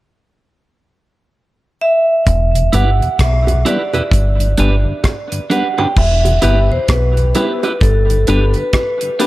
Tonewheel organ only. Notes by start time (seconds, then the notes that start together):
2.55 E2 B2
2.73 G3 B3 E4
3.00 E2 B2
3.47 E2 B2
3.65 G3 B3 E4
3.94 E2 B2
4.39 G2 D3
4.58 G3 B3 D4
4.85 G2 D3
5.32 G2 D3
5.51 G3 B3 D4
5.78 G2 D3
6.25 E2 B2
6.43 G3 B3 E4
6.71 E2 B2
7.17 E2 B2
7.35 G3 B3 E4
8.10 G2 D3
8.28 G3 B3 D4
8.56 G2 D3
9.02 G2 D3
9.21 G3 B3 D4